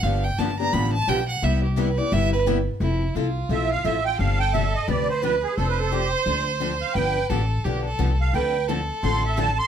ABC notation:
X:1
M:4/4
L:1/16
Q:"Swing" 1/4=173
K:Gmix
V:1 name="Accordion"
z16 | z16 | z8 e2 f2 e2 g2 | f2 g2 e2 _e2 d2 c2 B2 _A2 |
(3A2 B2 A2 G2 c4 z4 f2 | g4 z8 z2 f2 | g4 z4 c'2 e2 a2 c'2 |]
V:2 name="Violin"
f2 g2 a2 _b2 =b2 a2 g2 ^f2 | e2 G2 B2 d2 e2 B2 z4 | E4 F12 | A8 B8 |
c16 | B4 A4 G2 A4 z2 | B4 A12 |]
V:3 name="Steel-string acoustic guitar"
[D,F,B,DG]2 z2 [D,F,B,DG] z [B,DG]2 [D,F,B,DG]2 z2 [D,F,B,DG] z3 | [C,G,B,EG]2 z2 [C,G,B,EG] z [B,EG]2 [C,G,B,EG]2 z2 [C,G,B,EG] z3 | [F,CEA]2 z2 [F,CEA] z3 [F,CEA]2 z2 [F,CEA] z3 | [C,F,CDG]2 z2 [C,F,CDG] z3 [C,F,CDG]2 z2 [C,F,CDG] z3 |
[F,CDA]2 z2 [F,CDA] z3 [F,CDA]2 z2 [F,CDA] z3 | [D,F,B,DG]2 z2 [D,F,B,DG] z3 [D,F,B,DG]2 z2 [D,F,B,DG] z3 | [D,F,CDA]2 z2 [D,F,CDA] z3 [D,F,CDA]2 z2 [D,F,CDA] z3 |]
V:4 name="Steel-string acoustic guitar"
[D,F,B,DG]2 z2 [D,F,B,DG] z3 [D,F,B,DG]2 z2 [D,F,B,DG] z3 | [C,G,B,EG]2 z2 [C,G,B,EG] z3 [C,G,B,EG]2 z2 [C,G,B,EG] z3 | z16 | z16 |
z16 | z16 | [D,F,CDA]2 z2 [D,F,CDA] z3 [D,F,CDA]2 z2 [D,F,CDA] z3 |]
V:5 name="Upright bass" clef=bass
G,,,4 G,,,4 A,,,4 B,,,4 | C,,8 G,,,8 | F,,,4 C,,4 B,,,4 A,,,4 | G,,,8 D,,8 |
F,,,8 D,,8 | G,,,4 A,,,4 B,,,4 C,,4 | D,,8 A,,,8 |]